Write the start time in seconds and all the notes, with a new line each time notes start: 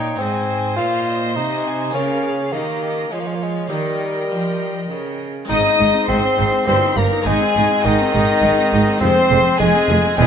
Already playing: A#2 A#3 D#4 C#5 F5 G5
0.16 G#2 C4 D#4 G#5
0.20 G#2 C5 D#5
0.50 D#5
0.77 A#2 F4 F5
1.07 D#5
1.36 C3 D#4 D#5 G#5
1.65 G#5
1.90 A#3 C#4 F4
1.94 C#3 C#4 A#4 F5
2.23 G#4
2.53 D#3 A#3 G4 D#5
3.11 F3 G#3 F4 C#5 F5
3.20 A#3
3.27 G#3
3.35 A#3
3.41 G#3 C#5
3.68 D#3 G3 A#3 D#4 A#4 D#5
3.72 D#3 G5
4.30 F3
4.90 C#3
5.45 G#3 C4 D#4
5.49 G#1 G#2 D#4 D#5 D#6
5.64 C4
5.78 G#1 G#2 D#4
5.94 C4
6.08 G#1 G#2 C4 D#4 C5 C6
6.23 C4
6.37 G#1 G#2 D#4
6.52 C4
6.64 G1 G2 A#3 C4 D#4 G4 C5 C6
6.68 G2
6.82 D#4
6.96 G1 G2 A#3 G4 A#4 A#5
7.12 D#4
7.22 G#1 G#2 G#3 C4 D#4 G#5
7.26 G#2 G#3 D#4 G#4
7.41 C4
7.55 G#1 G#2 D#4
7.71 C4
7.84 G#1 G#2 D#3 D#4 D#5
8.00 C4
8.14 G#1 G#2 D#4
8.29 C4
8.43 G#1 G#2 D#4
8.58 C4
8.72 G#1 G#2 D#4
8.86 C4
8.98 F2 G#3 C4 F4 C5 C6
9.02 F1 F2 G#3
9.16 C4
9.31 F1 F2 G#3
9.45 C4
9.59 F1 F2 G#3 G#4 G#5
9.74 C4
9.89 F1 F2 G#3
10.03 C4
10.15 E1 E2 G#3 C4 E4 G4 G#5
10.19 G#4